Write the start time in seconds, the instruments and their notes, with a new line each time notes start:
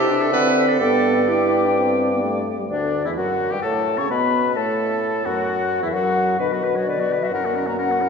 Already playing: bassoon C3, clarinet G4, oboe E5, flute A5
0.11 french horn D4
0.21 clarinet A4
0.32 bassoon D3, french horn C4, clarinet B4, flute F#5
0.68 clarinet A4
0.79 bassoon G2, french horn B3, clarinet A4, oboe D5, flute G5
1.28 french horn E4, clarinet G4, flute G5
1.65 french horn D4
1.76 french horn C4
2.12 french horn B3
2.23 french horn A3
2.59 french horn G3
2.69 bassoon D2, french horn D3, oboe D4, clarinet D4, flute D5
3.05 bassoon E2, french horn E3, oboe E4, clarinet E4, flute E5
3.16 bassoon F#2, french horn F#3, oboe F#4, clarinet F#4, flute F#5
3.51 bassoon G2, french horn G3, oboe G4, clarinet G4, flute G5
3.62 bassoon A2, french horn A3, oboe A4, clarinet A4, flute A5
3.98 bassoon C#3, french horn C#4, oboe C#5, clarinet C#5, flute C#6
4.09 bassoon B2, french horn B3, oboe B4, clarinet B4, flute B5
4.55 bassoon A2, french horn A3, oboe A4, clarinet A4, flute A5
5.25 bassoon F#2, french horn F#3, oboe F#4, clarinet F#4, flute F#5
5.82 bassoon E2, french horn E3, oboe E4, clarinet E4, flute E5
5.93 bassoon F#2, french horn F#3, oboe F#4, clarinet F#4, flute F#5
6.39 bassoon B2, french horn D3, clarinet D4, oboe B4, flute B4
6.52 french horn F#3, clarinet B3, oboe F#4
6.63 french horn D3, clarinet D4, oboe B4
6.75 french horn F#3, clarinet B3, oboe F#4, flute C#5
6.86 french horn D3, clarinet D4, oboe B4, flute D5
6.96 french horn F#3, clarinet B3, oboe F#4
7.07 french horn D3, clarinet D4
7.12 oboe B4
7.19 french horn F#3, clarinet B3, flute E5
7.23 oboe F#4
7.30 bassoon F#2, clarinet E4, flute F#5
7.34 french horn C#4, oboe A#4
7.42 french horn A#3, clarinet C#4, oboe F#4
7.54 french horn C#4, clarinet E4, oboe A#4
7.65 french horn A#3, clarinet C#4, oboe F#4, flute A#5
7.77 french horn C#4, clarinet E4, oboe A#4, flute F#5
7.88 french horn A#3, clarinet C#4, oboe F#4
7.99 french horn C#4, clarinet E4, oboe A#4